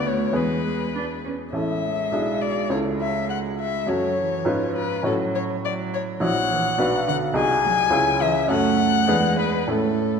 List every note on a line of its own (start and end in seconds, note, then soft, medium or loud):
0.00 0.32 D2 soft
0.00 0.32 B3 soft
0.00 0.33 F#4 soft
0.00 0.32 B4 soft
0.05 0.36 A3 soft
0.05 0.38 C#5 medium
0.32 1.50 E2 soft
0.32 0.89 G#3 soft
0.32 1.50 B3 soft
0.32 1.50 G#4 soft
0.32 1.50 B4 soft
0.32 1.26 B4 medium
0.95 1.03 D4 medium
1.25 1.33 C#4 soft
1.52 2.10 A1 soft
1.52 3.91 G#3 soft
1.52 2.11 C#4 soft
1.52 2.11 E4 soft
1.52 2.11 A4 soft
1.52 2.43 E5 medium
2.12 2.69 B1 soft
2.12 2.70 D4 soft
2.12 2.69 E4 soft
2.12 2.70 G#4 soft
2.42 2.70 D5 medium
2.70 3.85 C#2 soft
2.70 3.85 C#4 soft
2.70 3.85 E4 soft
2.70 3.86 A4 soft
2.70 2.78 C#5 soft
3.01 3.29 E5 medium
3.30 3.38 F#5 medium
3.60 3.90 E5 medium
3.87 4.45 F#2 soft
3.87 4.20 F#3 soft
3.87 4.44 C#4 soft
3.87 4.45 F#4 soft
3.87 4.45 A4 soft
3.87 4.76 C#5 medium
4.19 4.49 E3 soft
4.45 5.02 G#2 soft
4.45 5.05 F3 soft
4.45 5.02 C#4 soft
4.45 5.03 F4 soft
4.45 5.03 B4 soft
4.76 5.05 B4 medium
5.03 6.18 A2 soft
5.03 5.62 F#3 soft
5.03 6.18 C#4 soft
5.03 6.18 F#4 soft
5.03 5.14 A4 medium
5.03 6.18 C#5 soft
5.35 5.43 C#5 medium
5.64 6.22 F#3 medium
5.64 5.73 D5 medium
5.94 6.02 C#5 medium
6.20 6.77 A#1 soft
6.20 6.77 E4 soft
6.20 6.77 F#4 soft
6.20 6.77 C#5 soft
6.20 7.06 F#5 medium
6.52 6.73 E3 medium
6.78 7.34 B1 medium
6.78 7.34 D4 soft
6.78 7.33 F#4 soft
6.78 7.34 B4 soft
7.08 7.29 D3 medium
7.08 7.16 F#5 medium
7.33 7.90 C2 medium
7.33 7.90 D#4 soft
7.33 7.90 F#4 soft
7.33 7.90 G#4 soft
7.33 8.23 G#5 medium
7.65 7.86 F#3 medium
7.90 8.47 C#2 medium
7.90 8.47 C#4 soft
7.90 8.48 E4 soft
7.90 8.48 G#4 soft
8.21 8.43 E3 medium
8.21 8.50 E5 medium
8.48 9.06 F#2 medium
8.48 9.11 A3 medium
8.48 9.06 C#4 soft
8.48 9.06 F#4 soft
8.48 9.07 A4 soft
8.48 9.38 F#5 medium
9.08 9.67 E2 soft
9.08 9.72 G#3 medium
9.08 9.67 D4 soft
9.08 9.67 G#4 soft
9.08 9.68 B4 soft
9.39 9.71 B4 medium
9.68 10.20 A2 soft
9.68 10.20 A3 soft
9.68 10.20 C#4 soft
9.68 10.20 E4 soft
9.68 10.20 A4 medium
9.68 10.20 A4 soft